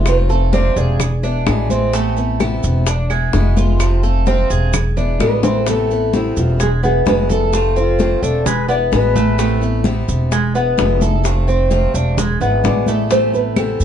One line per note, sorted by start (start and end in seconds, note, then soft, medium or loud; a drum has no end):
0.00 0.70 F1 loud
0.00 0.28 F4 medium
0.06 0.28 C3 medium
0.06 0.29 F3 medium
0.06 0.29 A3 medium
0.06 0.29 C4 medium
0.06 0.28 F4 medium
0.06 0.53 C5 medium
0.06 high bongo medium
0.06 high conga soft
0.06 claves medium
0.06 maracas medium
0.29 0.53 A3 soft
0.29 0.52 C4 soft
0.29 0.52 F4 medium
0.29 0.52 A4 medium
0.29 high bongo soft
0.29 high conga soft
0.29 maracas soft
0.53 0.99 C3 medium
0.53 0.99 F3 medium
0.53 0.99 A3 medium
0.53 0.76 C4 medium
0.53 1.00 C4 medium
0.53 1.00 F4 medium
0.53 0.75 D5 medium
0.53 high bongo medium
0.53 high conga medium
0.53 maracas soft
0.76 1.43 E1 loud
0.76 1.22 G#4 medium
0.76 1.67 D5 medium
0.76 high conga soft
0.76 maracas medium
1.00 muted steel-string acoustic guitar stroke medium
1.00 high bongo medium
1.00 high conga soft
1.00 low conga medium
1.00 claves medium
1.00 maracas loud
1.23 1.47 G#3 soft
1.23 1.46 B3 soft
1.23 1.69 D4 medium
1.23 1.46 E4 soft
1.23 high bongo soft
1.23 high conga soft
1.23 maracas soft
1.46 2.57 A1 medium
1.46 1.69 B2 medium
1.46 1.70 D3 medium
1.46 1.70 G#3 medium
1.46 1.70 B3 medium
1.46 1.69 E4 medium
1.46 high bongo medium
1.46 low bongo medium
1.46 high conga medium
1.46 claves medium
1.46 maracas soft
1.70 1.93 G#3 soft
1.70 1.93 B3 soft
1.70 1.93 C4 medium
1.70 1.92 E4 medium
1.70 high bongo soft
1.70 high conga medium
1.70 maracas medium
1.93 2.16 C3 medium
1.93 2.16 E3 medium
1.93 2.39 A3 medium
1.93 2.16 B3 medium
1.93 2.16 C4 medium
1.93 2.15 E4 medium
1.93 high bongo medium
1.93 maracas medium
2.16 2.40 B3 soft
2.16 2.40 C4 soft
2.16 2.39 E4 medium
2.16 high conga soft
2.16 maracas soft
2.40 2.86 C3 medium
2.40 2.86 E3 medium
2.40 2.86 B3 medium
2.40 2.86 C4 medium
2.40 2.87 E4 medium
2.40 high bongo medium
2.40 high conga medium
2.40 claves medium
2.40 maracas soft
2.63 3.30 E1 loud
2.63 high bongo soft
2.63 maracas medium
2.87 3.10 D4 medium
2.87 muted steel-string acoustic guitar stroke medium
2.87 high bongo medium
2.87 high conga soft
2.87 maracas loud
3.10 3.56 G#3 medium
3.10 3.33 G#3 soft
3.10 3.33 B3 soft
3.10 3.33 E4 soft
3.10 high bongo soft
3.10 high conga soft
3.10 claves medium
3.10 maracas soft
3.33 4.44 F1 loud
3.33 3.56 B2 medium
3.33 3.56 D3 medium
3.33 3.56 G#3 medium
3.33 3.56 B3 medium
3.33 3.55 E4 medium
3.33 high bongo medium
3.33 low bongo medium
3.33 high conga medium
3.33 maracas soft
3.56 3.80 G#3 soft
3.56 3.79 B3 soft
3.56 3.79 E4 medium
3.56 4.02 F4 medium
3.56 high bongo soft
3.56 high conga medium
3.56 maracas medium
3.80 4.02 C3 medium
3.80 4.03 F3 medium
3.80 4.03 A3 medium
3.80 4.02 C4 medium
3.80 4.02 F4 medium
3.80 high bongo medium
3.80 high conga soft
3.80 claves medium
3.80 maracas medium
4.03 4.26 A3 soft
4.03 4.26 C4 soft
4.03 4.26 F4 soft
4.03 4.26 A4 medium
4.03 high bongo soft
4.03 high conga soft
4.03 maracas soft
4.26 4.72 C3 medium
4.26 4.73 F3 medium
4.26 4.73 A3 medium
4.26 4.50 C4 medium
4.26 4.73 C4 medium
4.26 4.73 F4 medium
4.26 high bongo medium
4.26 high conga medium
4.26 maracas soft
4.50 5.16 E1 loud
4.50 4.96 G#4 medium
4.50 high conga soft
4.50 maracas medium
4.73 muted steel-string acoustic guitar stroke medium
4.73 high bongo medium
4.73 high conga soft
4.73 low conga medium
4.73 claves medium
4.73 maracas loud
4.97 5.20 G#3 soft
4.97 5.20 B3 soft
4.97 5.42 D4 medium
4.97 5.19 E4 soft
4.97 high bongo soft
4.97 high conga soft
4.97 low conga medium
4.97 maracas soft
5.20 6.30 A1 medium
5.20 5.42 B2 medium
5.20 5.43 D3 medium
5.20 5.43 G#3 medium
5.20 5.43 B3 medium
5.20 5.42 E4 medium
5.20 5.69 B4 loud
5.20 high bongo medium
5.20 high conga medium
5.20 claves medium
5.20 maracas soft
5.43 5.67 G#3 soft
5.43 5.66 B3 soft
5.43 5.66 C4 medium
5.43 5.66 E4 soft
5.43 low bongo loud
5.43 high conga loud
5.43 maracas medium
5.66 5.89 C3 medium
5.66 5.89 E3 medium
5.66 6.12 A3 medium
5.66 5.90 B3 medium
5.66 5.90 C4 medium
5.66 5.89 E4 medium
5.66 6.16 A4 medium
5.66 high bongo medium
5.66 high conga soft
5.66 maracas medium
5.90 6.13 B3 soft
5.90 6.13 C4 soft
5.90 6.13 E4 medium
5.90 high conga soft
5.90 maracas soft
6.13 6.59 C3 medium
6.13 6.60 E3 medium
6.13 6.60 B3 medium
6.13 6.60 C4 medium
6.13 6.60 E4 medium
6.13 6.39 E4 medium
6.13 high bongo medium
6.13 high conga medium
6.13 maracas soft
6.37 7.03 E1 loud
6.37 6.62 F4 medium
6.37 high bongo soft
6.37 maracas medium
6.60 6.83 G#3 medium
6.60 6.69 G#4 medium
6.60 muted steel-string acoustic guitar stroke medium
6.60 high bongo medium
6.60 high conga soft
6.60 maracas loud
6.83 7.06 G#3 soft
6.83 7.28 B3 medium
6.83 7.06 B3 soft
6.83 7.05 E4 soft
6.83 7.06 G#4 medium
6.83 high bongo soft
6.83 high conga soft
6.83 maracas soft
7.06 8.16 F1 medium
7.06 7.29 B2 medium
7.06 7.29 D3 medium
7.06 7.29 G#3 medium
7.06 7.29 B3 medium
7.06 7.28 E4 medium
7.06 7.31 B4 loud
7.06 high bongo medium
7.06 low bongo medium
7.06 high conga medium
7.06 maracas soft
7.29 7.53 G#3 soft
7.29 7.52 B3 soft
7.29 7.52 E4 soft
7.29 7.75 A4 medium
7.29 8.20 A4 medium
7.29 high bongo soft
7.29 high conga medium
7.29 maracas medium
7.53 7.75 C3 medium
7.53 7.76 F3 medium
7.53 7.76 A3 medium
7.53 7.76 C4 medium
7.53 7.75 F4 medium
7.53 high bongo medium
7.53 high conga soft
7.53 maracas medium
7.76 7.99 A3 soft
7.76 8.21 C4 medium
7.76 7.99 C4 soft
7.76 7.99 F4 soft
7.76 8.24 F4 medium
7.76 high bongo soft
7.76 high conga soft
7.76 maracas soft
7.99 8.45 C3 medium
7.99 8.45 F3 medium
7.99 8.45 A3 medium
7.99 8.45 C4 medium
7.99 8.46 F4 medium
7.99 high bongo medium
7.99 high conga medium
7.99 maracas soft
8.22 8.88 E1 medium
8.22 8.45 D4 medium
8.22 8.47 A4 medium
8.22 high conga soft
8.22 maracas medium
8.46 8.68 G#3 medium
8.46 8.69 B4 loud
8.46 muted steel-string acoustic guitar stroke medium
8.46 high bongo medium
8.46 high conga soft
8.46 low conga medium
8.46 maracas loud
8.68 8.91 G#3 soft
8.68 9.14 B3 medium
8.68 8.92 B3 soft
8.68 8.91 E4 soft
8.68 8.75 D5 loud
8.68 high bongo soft
8.68 high conga soft
8.68 maracas soft
8.92 10.02 A1 medium
8.92 9.14 B2 medium
8.92 9.15 D3 medium
8.92 9.15 G#3 medium
8.92 9.15 B3 medium
8.92 9.14 E4 medium
8.92 9.81 B4 medium
8.92 high bongo medium
8.92 low bongo medium
8.92 high conga medium
8.92 maracas soft
9.16 9.39 G#3 soft
9.16 9.38 A3 medium
9.16 9.38 B3 soft
9.16 9.38 E4 medium
9.16 high bongo soft
9.16 high conga loud
9.16 maracas medium
9.38 9.61 C3 medium
9.38 9.61 E3 medium
9.38 9.84 A3 medium
9.38 9.61 B3 medium
9.38 9.61 C4 medium
9.38 9.60 E4 medium
9.38 high bongo medium
9.38 high conga soft
9.38 maracas medium
9.61 9.84 B3 soft
9.61 9.84 C4 soft
9.61 9.84 E4 soft
9.61 high conga soft
9.61 maracas soft
9.84 10.30 C3 medium
9.84 10.31 E3 medium
9.84 10.31 B3 medium
9.84 10.31 C4 medium
9.84 10.31 E4 medium
9.84 high bongo medium
9.84 high conga medium
9.84 maracas soft
10.08 10.74 E1 loud
10.08 high bongo soft
10.08 maracas medium
10.31 10.55 G#3 medium
10.31 muted steel-string acoustic guitar stroke medium
10.31 high bongo medium
10.31 high conga soft
10.31 maracas medium
10.55 10.77 G#3 soft
10.55 11.00 B3 medium
10.55 10.78 B3 soft
10.55 10.77 E4 soft
10.55 high bongo soft
10.55 high conga soft
10.55 maracas soft
10.77 11.88 F1 medium
10.77 11.00 B2 medium
10.77 11.00 D3 medium
10.77 11.01 G#3 medium
10.77 11.01 B3 medium
10.77 10.99 E4 medium
10.77 high bongo medium
10.77 low bongo medium
10.77 high conga medium
10.77 maracas soft
11.01 11.24 G#3 soft
11.01 11.24 B3 soft
11.01 11.23 E4 medium
11.01 11.47 A4 medium
11.01 high bongo soft
11.01 high conga medium
11.01 maracas medium
11.24 11.46 C3 medium
11.24 11.47 F3 medium
11.24 11.47 A3 medium
11.24 11.47 C4 medium
11.24 11.46 F4 medium
11.24 high bongo medium
11.24 high conga soft
11.24 maracas medium
11.47 11.70 A3 soft
11.47 11.93 C4 medium
11.47 11.70 C4 soft
11.47 11.70 F4 soft
11.47 high bongo soft
11.47 high conga soft
11.47 maracas soft
11.70 12.16 C3 medium
11.70 12.17 F3 medium
11.70 12.17 A3 medium
11.70 12.17 C4 medium
11.70 12.17 F4 medium
11.70 high bongo medium
11.70 high conga medium
11.70 maracas soft
11.94 12.38 E1 loud
11.94 12.17 D4 medium
11.94 high conga soft
11.94 maracas medium
12.17 12.40 G#3 medium
12.17 muted steel-string acoustic guitar stroke medium
12.17 high bongo medium
12.17 high conga soft
12.17 low conga medium
12.17 maracas medium
12.40 12.62 G#1 medium
12.40 12.64 G#3 soft
12.40 12.86 B3 medium
12.40 12.63 B3 soft
12.40 12.63 E4 soft
12.40 high bongo soft
12.40 high conga soft
12.40 low conga medium
12.40 maracas soft
12.64 13.74 A1 medium
12.64 12.86 B2 medium
12.64 12.87 D3 medium
12.64 12.87 G#3 medium
12.64 12.87 B3 medium
12.64 12.86 E4 medium
12.64 13.11 D5 loud
12.64 high bongo medium
12.64 low bongo medium
12.64 high conga medium
12.64 maracas soft
12.86 13.11 G#3 soft
12.86 13.10 A3 medium
12.86 13.10 B3 soft
12.86 13.10 E4 soft
12.86 high bongo soft
12.86 high conga medium
12.86 maracas medium
13.10 13.33 C3 medium
13.10 13.33 E3 medium
13.10 13.56 A3 medium
13.10 13.33 B3 medium
13.10 13.33 C4 medium
13.10 13.32 E4 medium
13.10 13.33 C5 loud
13.10 high bongo medium
13.10 high conga soft
13.10 maracas medium
13.33 13.56 B3 soft
13.33 13.56 C4 soft
13.33 13.56 E4 soft
13.33 13.56 B4 medium
13.33 high conga soft
13.33 maracas soft
13.56 13.85 C3 medium
13.56 13.85 E3 medium
13.56 13.85 B3 medium
13.56 13.85 C4 medium
13.56 13.85 E4 medium
13.56 13.85 A4 medium
13.56 high bongo medium
13.56 high conga medium
13.56 claves medium
13.56 maracas soft
13.80 13.85 E1 loud
13.80 high bongo soft
13.80 maracas medium